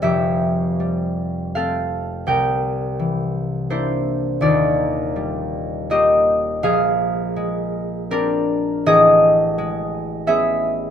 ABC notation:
X:1
M:3/4
L:1/8
Q:1/4=82
K:Bblyd
V:1 name="Harp"
[Ge]4 [Af]2 | [Bg]4 [Ec]2 | [Fd]4 [G_e]2 | [_Af]4 [DB]2 |
[K:Am] [^G_e]4 [G=e]2 |]
V:2 name="Harp"
[F,,,F,,G,A,CFAc]2 G,2 [A,C]2 | C,,2 E,2 [B,D]2 | [_E,,,_E,,]2 G,2 [B,F]2 | B,,,2 _A,2 C2 |
[K:Am] A,,,2 ^G,2 [B,^C]2 |]